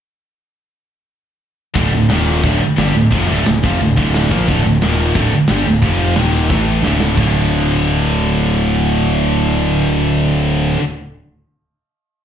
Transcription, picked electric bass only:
1.76 1.91 D1 medium
1.93 2.08 D1 medium
2.11 2.42 D#1 loud
2.44 2.60 D1 medium
2.62 muted picked electric bass stroke soft
2.78 2.94 G1 loud
2.95 3.11 D1 medium
3.12 3.28 F1 medium
3.30 3.45 D1 loud
3.46 3.62 D1 medium
3.63 3.79 F1 medium
3.81 3.96 D1 medium
3.97 4.29 D1 loud
4.31 4.47 A#1 loud
4.48 4.64 D1 medium
4.65 4.81 D1 medium
4.81 5.13 D#1 loud
5.15 5.31 D1 loud
5.32 muted picked electric bass stroke soft
5.50 5.66 G1 medium
5.67 5.82 D1 medium
5.83 6.14 F1 medium
6.17 6.48 D#1 medium
6.50 6.82 A1 loud
6.83 7.15 D1 medium
7.18 10.76 D1 loud

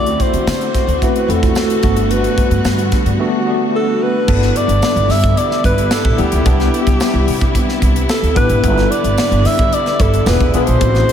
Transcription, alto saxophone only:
0.00 0.23 D5 loud
0.22 1.05 C5 loud
1.04 1.32 B4 medium
1.30 2.13 A4 loud
2.12 2.93 B4 medium
3.76 4.05 A4 loud
4.03 4.58 B4 loud
4.57 5.13 D5 loud
5.11 5.39 E5 loud
5.38 5.65 D5 loud
5.65 5.94 B4 loud
5.92 6.22 A4 loud
6.20 7.83 G4 medium
8.10 8.35 A4 medium
8.37 8.92 B4 loud
8.91 9.48 D5 loud
9.47 9.76 E5 loud
9.74 10.03 D5 loud
10.02 10.31 A4 loud
10.29 10.55 B4 medium
10.56 11.12 C5 loud

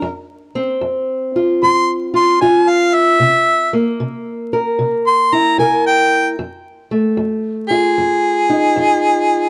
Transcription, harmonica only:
0.00 0.25 A#4 loud
1.63 1.88 C6 loud
2.16 2.40 C6 medium
2.41 2.70 G#5 medium
2.69 2.96 F5 loud
2.94 3.71 E5 loud
5.07 5.36 C6 loud
5.34 5.58 A#5 loud
5.58 5.84 G#5 medium
5.86 6.28 G5 loud
7.68 9.49 G#4 medium

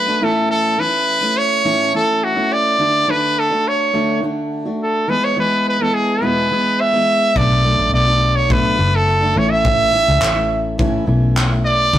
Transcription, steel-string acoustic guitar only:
0.06 0.20 A3 soft
0.06 0.22 D4 soft
0.06 0.21 F#4 soft
0.21 0.78 A2 medium
0.21 0.77 E3 medium
0.21 0.79 A3 medium
0.21 0.79 C#4 medium
0.21 0.79 E4 medium
0.78 1.21 E3 medium
0.78 1.22 A3 soft
0.78 1.21 C#4 medium
0.78 1.20 E4 medium
1.21 1.64 A3 soft
1.21 1.64 C#4 soft
1.21 1.64 E4 soft
1.64 1.93 A2 medium
1.64 1.93 E3 medium
1.64 1.93 A3 medium
1.64 1.93 C#4 medium
1.64 1.94 E4 medium
1.94 2.36 E3 medium
1.94 2.36 A3 medium
1.94 2.35 C#4 medium
1.94 2.34 E4 medium
2.35 2.78 A3 soft
2.35 2.79 C#4 soft
2.35 2.78 E4 soft
2.78 3.06 D3 medium
2.78 3.07 A3 medium
2.78 3.07 D4 medium
2.78 3.08 F#4 medium
3.07 3.50 D3 medium
3.07 3.50 A3 medium
3.07 3.50 D4 medium
3.07 3.49 F#4 medium
3.50 3.92 A3 soft
3.50 3.93 D4 soft
3.50 3.93 F#4 soft
3.93 4.21 D3 medium
3.93 4.22 A3 medium
3.93 4.22 D4 medium
3.93 4.22 F#4 medium
4.22 4.65 D3 medium
4.22 4.65 A3 medium
4.22 4.65 D4 medium
4.22 4.64 F#4 medium
4.65 5.08 A3 soft
4.65 5.08 D4 soft
4.65 5.08 F#4 soft
5.07 5.35 E3 medium
5.07 5.36 G#3 medium
5.07 5.36 B3 medium
5.07 5.37 G#4 medium
5.36 5.79 E3 soft
5.36 5.79 G#3 soft
5.36 5.79 B3 medium
5.36 5.78 G#4 medium
5.79 6.21 E3 soft
5.79 6.21 G#3 soft
5.79 6.21 B3 soft
5.79 6.21 G#4 soft
6.21 6.50 E2 medium
6.21 6.50 B2 medium
6.21 6.49 E3 medium
6.21 6.50 G#3 medium
6.21 6.51 B3 medium
6.21 6.51 G#4 medium
6.50 6.93 E3 soft
6.50 6.93 G#3 medium
6.50 6.92 B3 medium
6.50 6.91 G#4 medium
6.93 7.35 E3 soft
6.93 7.36 G#3 soft
6.93 7.36 B3 soft
6.93 7.36 G#4 soft
7.35 7.62 F#3 medium
7.35 7.64 A3 medium
7.35 7.64 D4 medium
7.35 7.65 F#4 medium
7.64 8.07 F#3 soft
7.64 8.07 A3 medium
7.64 8.06 D4 medium
7.64 8.05 F#4 medium
8.07 8.49 A3 soft
8.07 8.49 D4 soft
8.07 8.49 F#4 soft
8.49 8.78 B2 medium
8.49 8.76 F#3 medium
8.49 8.78 A3 medium
8.49 8.78 D4 medium
8.49 8.79 F#4 medium
8.78 9.21 F#3 soft
8.78 9.22 A3 medium
8.78 9.21 D4 medium
8.78 9.20 F#4 medium
9.21 9.35 A3 soft
9.21 9.36 D4 soft
9.21 9.36 F#4 soft
9.35 9.93 A2 medium
9.35 9.92 E3 medium
9.35 9.94 A3 medium
9.35 9.93 C#4 medium
9.35 9.93 E4 medium
9.93 10.36 E3 soft
9.93 10.36 A3 soft
9.93 10.35 C#4 medium
9.93 10.34 E4 medium
10.35 10.78 A3 soft
10.35 10.78 C#4 soft
10.35 10.78 E4 soft
10.78 11.07 A2 medium
10.78 11.05 E3 medium
10.78 11.06 A3 medium
10.78 11.06 C#4 medium
10.78 11.07 E4 medium
11.06 11.50 E3 medium
11.06 11.50 A3 medium
11.06 11.49 C#4 medium
11.06 11.48 E4 medium
11.49 11.92 A3 soft
11.49 11.93 C#4 soft
11.49 11.93 E4 soft
11.92 11.98 D3 medium
11.92 11.98 A3 medium
11.92 11.98 D4 medium
11.92 11.98 F#4 medium

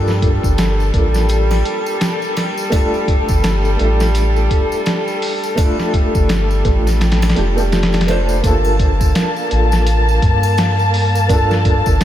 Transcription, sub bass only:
0.00 0.40 G2 medium
0.44 0.91 G1 loud
0.94 1.62 A1 medium
3.29 3.77 G1 loud
3.80 4.48 A1 medium
6.15 6.62 G1 loud
6.65 7.34 A1 medium
7.37 8.41 F1 medium
8.44 9.12 G1 loud
9.51 10.20 A1 medium
10.22 11.82 G2 medium
11.87 12.04 G1 loud

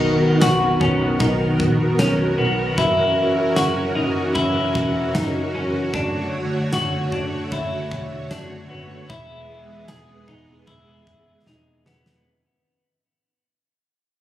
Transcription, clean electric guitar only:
0.00 0.42 D#4 loud
0.42 0.81 F#4 medium
0.81 1.20 C#4 medium
1.21 1.99 D#4 medium
1.99 2.38 C#4 medium
2.38 2.78 B3 medium
2.78 3.56 E4 loud
3.56 3.96 F#4 medium
3.95 4.36 D#4 medium
4.35 5.14 E4 medium
5.15 5.54 D#4 medium
5.55 5.94 C#4 medium
5.95 6.73 D4 medium
6.73 7.13 F#4 medium
7.13 7.52 D4 medium
7.52 8.31 E4 medium
8.31 8.69 D4 medium
8.70 9.10 B3 medium
9.10 9.88 E4 loud
9.88 10.28 G#4 medium
10.28 10.68 D#4 medium
10.67 11.46 E4 medium
11.47 11.86 D#4 medium
11.86 12.26 B3 medium

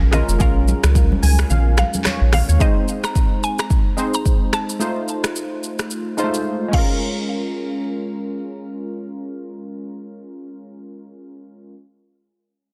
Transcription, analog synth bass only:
0.01 0.22 A#1 medium
0.28 0.37 F1 medium
0.40 0.73 A#1 loud
0.84 1.13 C#2 loud
1.23 1.43 C#2 loud
1.50 1.83 A#1 loud
2.21 2.42 A#1 loud
2.49 2.57 D#2 medium

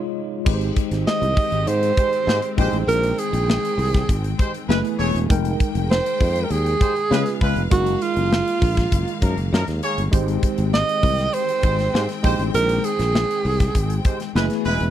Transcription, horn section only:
1.97 2.10 G#3 medium
1.97 2.10 G4 medium
1.97 2.10 C5 medium
2.28 2.37 G#3 medium
2.28 2.37 G4 medium
2.28 2.37 C5 loud
2.58 2.77 G#3 medium
2.58 2.77 G4 medium
2.58 2.77 C5 loud
4.38 4.52 G#3 medium
4.38 4.52 G4 medium
4.38 4.51 C5 medium
4.69 4.79 G#3 medium
4.69 4.79 E4 medium
4.69 4.79 B4 loud
4.99 5.18 A3 loud
4.99 5.18 G#4 loud
4.99 5.18 C#5 loud
6.81 6.94 G#3 medium
6.81 6.94 G4 medium
6.81 6.94 C5 medium
7.11 7.20 G#3 medium
7.11 7.21 F4 medium
7.11 7.21 B4 loud
7.42 7.61 G#3 medium
7.42 7.61 F4 medium
7.42 7.61 B4 loud
9.22 9.35 F3 medium
9.22 9.35 D#4 medium
9.22 9.35 A#4 medium
9.52 9.62 F3 medium
9.52 9.62 D#4 medium
9.52 9.62 A#4 loud
9.82 10.02 A#3 medium
9.82 10.02 G#4 medium
9.82 10.02 C#5 loud
11.63 11.76 G#3 medium
11.63 11.76 G4 medium
11.63 11.76 C5 medium
11.93 12.03 G#3 medium
11.93 12.03 G4 medium
11.93 12.03 C5 medium
12.23 12.43 G#3 loud
12.23 12.43 G4 medium
12.23 12.43 C5 loud
14.04 14.18 G#3 medium
14.04 14.18 G4 medium
14.04 14.18 C5 medium
14.35 14.45 G#3 medium
14.35 14.45 E4 medium
14.35 14.44 B4 loud
14.65 14.85 G#3 medium
14.65 14.85 E4 medium
14.65 14.85 B4 loud

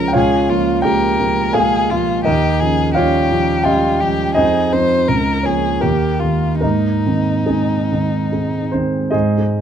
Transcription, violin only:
0.00 0.15 A#4 medium
0.17 0.51 G#4 medium
0.50 0.83 F4 medium
0.84 1.56 A#4 medium
1.55 1.92 G#4 medium
1.90 2.24 F4 soft
2.24 2.61 G4 medium
2.60 2.94 G#4 medium
2.95 3.65 G4 medium
3.64 4.02 F4 medium
4.00 4.34 G4 soft
4.35 4.74 G#4 soft
4.73 5.10 C5 medium
5.08 5.47 A#4 medium
5.46 5.83 G#4 soft
5.81 6.21 G4 soft
6.20 6.61 F4 soft
6.61 8.68 D#4 soft

